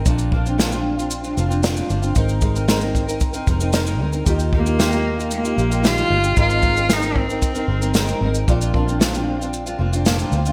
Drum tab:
SH |xx-xxx-xxxxxxxxx|xxxxxxxxxxxxxx-x|xx-xxx-xxxxxxx-x|xxxxxx-xxx-xxx-x|
SD |----o-------o---|----o-------o---|----o-------o---|----o-------o---|
BD |o-o-------------|o-o---o-o-o-----|o-o-------------|o-o---o-o-------|

SH |xx-xxx-xxx-xxxxx|
SD |----o-------o---|
BD |o-o-------------|